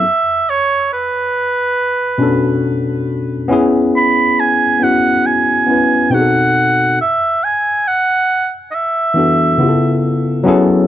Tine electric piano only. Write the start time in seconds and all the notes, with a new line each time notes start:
2.18 B2 C#4 D4 F#4
2.23 A4
3.48 B3 C#4 E4
3.53 G#4
4.79 B3 C#4 E4
4.84 F#4
5.67 B3 C#4 E4
5.71 B4
6.10 B2 C4 D#4 F#4
6.15 G#4
6.21 A4
9.14 E3 B3 D4 F#4
9.19 A4
9.58 C#3 B3 E4 F4
9.62 G4
9.69 A4
10.44 F#3 B3 C#4 E4
10.48 G#4 A4